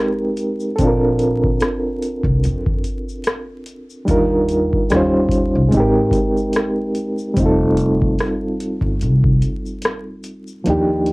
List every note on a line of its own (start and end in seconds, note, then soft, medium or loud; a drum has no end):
0.00 0.75 G#3 medium
0.00 0.76 C4 medium
0.00 0.78 D#4 medium
0.00 0.79 G4 medium
0.00 0.81 A#4 medium
0.37 closed hi-hat medium
0.37 shaker soft
0.60 shaker medium
0.76 1.58 A#1 medium
0.76 4.04 C4 medium
0.76 4.02 A4 medium
0.76 kick loud
0.76 closed hi-hat medium
0.76 shaker medium
0.82 4.05 D4 medium
0.82 4.07 F4 medium
0.87 4.08 A#4 medium
1.19 closed hi-hat medium
1.19 shaker soft
1.44 kick medium
1.60 cross-stick loud
1.60 closed hi-hat medium
1.60 shaker medium
2.02 closed hi-hat medium
2.02 shaker soft
2.24 2.46 C2 medium
2.24 kick medium
2.44 2.82 F2 medium
2.44 closed hi-hat medium
2.44 shaker medium
2.66 kick loud
2.84 closed hi-hat medium
2.84 shaker soft
3.09 shaker soft
3.24 cross-stick loud
3.24 closed hi-hat medium
3.24 shaker medium
3.66 closed hi-hat medium
3.66 shaker soft
3.90 shaker soft
4.05 4.68 D#2 loud
4.05 4.89 G3 medium
4.05 4.89 D4 medium
4.05 4.90 D#4 medium
4.05 kick loud
4.05 closed hi-hat medium
4.05 shaker medium
4.09 4.91 F4 medium
4.09 4.92 A#4 medium
4.48 closed hi-hat medium
4.48 shaker soft
4.73 kick medium
4.90 5.51 D#2 loud
4.90 5.72 G3 medium
4.90 5.73 C#4 medium
4.90 5.73 D#4 medium
4.90 cross-stick loud
4.90 closed hi-hat medium
4.90 shaker medium
4.95 5.75 F4 medium
4.95 5.75 C5 medium
5.29 kick medium
5.29 closed hi-hat medium
5.29 shaker soft
5.55 5.71 C2 medium
5.69 6.10 G#1 loud
5.69 7.32 G#3 medium
5.69 7.33 C4 medium
5.69 kick medium
5.69 closed hi-hat medium
5.73 7.34 D#4 medium
5.73 shaker medium
5.77 7.36 G4 medium
5.77 7.37 A#4 medium
6.11 kick loud
6.11 closed hi-hat medium
6.11 shaker soft
6.37 shaker soft
6.53 cross-stick loud
6.53 closed hi-hat medium
6.53 shaker medium
6.95 closed hi-hat medium
6.95 shaker soft
7.18 shaker medium
7.34 8.15 F1 loud
7.34 10.60 G3 medium
7.34 10.62 C4 medium
7.34 kick loud
7.34 closed hi-hat medium
7.34 shaker medium
7.40 10.63 D#4 medium
7.40 10.64 F4 medium
7.46 10.66 A4 medium
7.77 closed hi-hat medium
7.77 shaker soft
8.02 kick medium
8.18 cross-stick loud
8.18 closed hi-hat medium
8.18 shaker medium
8.60 closed hi-hat medium
8.60 shaker soft
8.81 9.04 G1 medium
8.81 kick medium
9.01 9.39 C2 medium
9.01 closed hi-hat medium
9.01 shaker medium
9.24 kick loud
9.42 closed hi-hat medium
9.42 shaker soft
9.66 shaker soft
9.82 cross-stick loud
9.82 closed hi-hat medium
9.82 shaker medium
10.23 closed hi-hat medium
10.23 shaker soft
10.47 shaker medium
10.64 11.13 D#2 loud
10.64 11.13 F3 medium
10.64 11.13 A#3 medium
10.64 11.13 D4 medium
10.64 closed hi-hat medium
10.68 11.13 D#4 medium
10.68 11.13 G4 medium
11.06 closed hi-hat medium